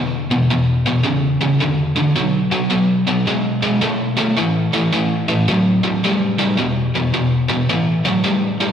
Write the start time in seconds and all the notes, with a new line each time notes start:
Already playing: E2 B2
0.31 E2 B2
0.50 E2 B2
0.86 E2 B2
1.03 E2 C#3
1.41 E2 C#3
1.60 E2 D3
1.96 E2 D3
2.16 B2 F#3
2.51 B2 F#3
2.70 B2 F#3
3.08 B2 F#3
3.27 B2 G#3
3.63 B2 G#3
3.81 B2 A3
4.17 B2 A3
4.37 A2 E3
4.74 A2 E3
4.93 A2 E3
5.28 A2 E3
5.48 A2 F#3
5.84 A2 F#3
6.04 A2 G3
6.39 A2 G3
6.58 E2 B2
6.95 E2 B2
7.14 E2 B2
7.48 E2 B2
7.69 A2 E3
8.05 A2 F#3
8.24 A2 G3
8.61 A2 G3